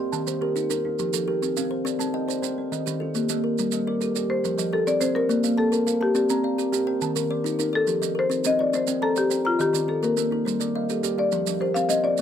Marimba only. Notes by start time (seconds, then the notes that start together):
4.30 C5
4.73 A4
4.87 D5
5.01 C5
5.15 A#4
5.58 A4
6.03 G4
6.16 G4
7.75 A4
8.19 C5
8.46 D#5
8.61 D5
8.75 C5
9.03 A4
9.18 G4
9.47 F4
9.61 G4
9.89 A4
10.05 A#4
11.19 D5
11.61 C5
11.74 F5
11.89 D#5
12.04 D5